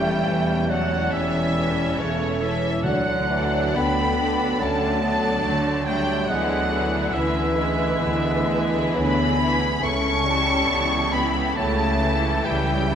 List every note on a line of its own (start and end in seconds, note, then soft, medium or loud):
0.00 0.16 E1 medium
0.00 0.16 E2 medium
0.00 0.68 E3 medium
0.00 0.27 G3 medium
0.00 0.67 G3 medium
0.00 1.15 A3 medium
0.00 0.68 C#4 medium
0.00 0.68 A4 soft
0.00 0.67 E5 medium
0.00 0.67 G5 medium
0.00 0.72 G5 medium
0.26 1.03 E1 medium
0.26 1.03 E2 medium
0.26 0.69 E3 medium
0.69 1.55 E3 medium
0.69 1.14 F#3 medium
0.69 1.55 C#4 medium
0.69 1.55 A4 soft
0.69 1.13 D5 medium
0.69 1.12 F#5 medium
0.69 1.13 F#5 medium
1.13 1.90 E1 medium
1.13 1.90 E2 medium
1.13 1.99 E3 medium
1.13 2.01 G3 medium
1.13 2.58 C#4 medium
1.13 2.00 C#5 medium
1.13 2.00 E5 medium
1.13 1.72 E5 medium
1.56 2.40 E3 medium
1.56 2.40 C#4 soft
1.56 2.40 A4 medium
1.99 2.75 E1 medium
1.99 2.75 E2 medium
1.99 2.42 C#3 medium
1.99 2.58 A3 medium
1.99 2.42 A4 medium
1.99 2.43 C#5 medium
1.99 2.42 C#5 medium
2.41 2.84 E3 medium
2.41 2.84 E3 soft
2.41 2.84 C#4 soft
2.41 2.84 A4 soft
2.41 2.85 C#5 medium
2.41 2.85 E5 medium
2.83 3.66 D2 medium
2.83 4.15 D3 medium
2.83 3.66 D3 medium
2.83 3.27 F#3 medium
2.83 3.75 F#3 medium
2.83 3.73 D4 soft
2.83 3.75 D5 medium
2.83 3.77 F#5 medium
2.83 3.74 F#5 medium
3.30 3.78 E3 medium
3.30 4.18 F#3 medium
3.30 4.18 D4 medium
3.30 4.18 A4 soft
3.30 4.18 D5 medium
3.75 4.51 D2 medium
3.75 4.51 D3 medium
3.75 4.61 D3 medium
3.75 4.60 B3 medium
3.75 4.63 D4 soft
3.75 4.60 G5 medium
3.75 4.60 B5 medium
4.19 5.00 F#3 soft
4.19 5.00 D4 soft
4.19 5.00 A4 soft
4.19 5.01 D5 soft
4.60 5.34 D2 medium
4.60 5.34 D3 medium
4.60 5.42 F#3 medium
4.60 5.70 A3 medium
4.60 5.03 C#4 medium
4.60 5.64 F#5 medium
4.60 5.86 A5 medium
4.60 5.88 A5 medium
5.01 5.85 F#3 medium
5.01 5.45 B3 medium
5.01 5.85 D4 medium
5.01 5.85 A4 medium
5.01 5.85 D5 medium
5.43 6.19 D2 medium
5.43 6.20 D3 medium
5.43 6.27 F#3 medium
5.43 5.87 A3 medium
5.86 6.29 F#3 soft
5.86 6.29 G3 medium
5.86 6.31 A3 medium
5.86 6.29 D4 soft
5.86 6.29 A4 soft
5.86 6.29 D5 medium
5.86 6.29 E5 medium
5.86 6.28 G5 medium
5.86 6.29 G5 medium
6.29 7.04 D2 medium
6.29 7.04 D3 medium
6.29 6.71 E3 soft
6.29 7.14 F#3 medium
6.29 6.73 G#3 medium
6.29 7.14 B3 medium
6.29 6.71 E4 soft
6.29 6.70 G#4 soft
6.29 6.70 B4 medium
6.29 7.14 D5 medium
6.29 7.14 F#5 medium
6.29 7.15 F#5 medium
6.72 7.55 E3 soft
6.72 7.15 A3 medium
6.72 7.55 E4 soft
6.72 7.54 G#4 medium
6.72 7.54 B4 medium
7.13 7.89 D2 medium
7.13 7.89 D3 medium
7.13 8.95 E3 medium
7.13 7.58 B3 soft
7.13 8.01 C#4 soft
7.13 8.95 B4 medium
7.13 8.94 E5 medium
7.13 8.65 E5 medium
7.56 8.45 E3 soft
7.56 8.97 G#3 medium
7.56 8.45 E4 soft
7.56 8.45 G#4 soft
7.56 8.45 B4 soft
7.99 8.84 D2 medium
7.99 8.84 D3 medium
7.99 8.96 B3 medium
8.46 9.38 E3 medium
8.46 9.38 E4 medium
8.46 9.39 G#4 medium
8.46 9.38 B4 medium
8.94 9.72 D2 medium
8.94 9.73 D3 medium
8.94 9.42 F#3 medium
8.94 9.83 B3 medium
8.94 9.56 D4 medium
8.94 9.82 G#5 medium
8.94 9.79 B5 medium
8.94 9.83 B5 medium
9.40 9.70 E3 medium
9.40 9.82 E3 soft
9.40 9.82 E4 medium
9.40 9.83 G#4 soft
9.40 9.83 B4 soft
9.82 10.59 C#2 medium
9.82 10.59 C#3 medium
9.82 10.27 A3 medium
9.82 11.13 C#4 medium
9.82 10.71 C#4 medium
9.82 11.13 A5 medium
9.82 11.13 C#6 loud
9.82 11.15 C#6 medium
10.25 11.11 E3 medium
10.25 11.30 G3 medium
10.25 11.11 E4 soft
10.25 11.12 G4 medium
10.25 11.12 A4 medium
10.69 11.47 C#2 medium
10.69 11.47 C#3 medium
10.69 11.58 B3 medium
11.12 11.99 E3 medium
11.12 11.57 B3 medium
11.12 11.99 E4 medium
11.12 11.99 G4 soft
11.12 11.99 A4 soft
11.12 11.57 G5 medium
11.12 11.56 B5 medium
11.12 11.59 B5 medium
11.56 12.34 C#2 medium
11.56 12.34 C#3 medium
11.56 12.02 F#3 medium
11.56 12.46 A3 medium
11.56 12.43 A3 medium
11.56 12.12 E5 medium
11.56 12.43 A5 medium
11.56 12.47 A5 medium
12.00 12.44 E3 medium
12.00 12.87 E3 medium
12.00 12.87 E4 medium
12.00 12.88 G4 medium
12.00 12.87 A4 medium
12.44 12.95 C#2 medium
12.44 12.95 C#3 medium
12.44 12.95 E3 medium
12.44 12.95 G3 medium
12.44 12.95 E4 medium
12.44 12.95 E5 medium
12.44 12.95 G5 medium
12.89 12.95 E3 soft
12.89 12.95 E4 soft
12.89 12.95 G4 medium
12.89 12.95 A4 medium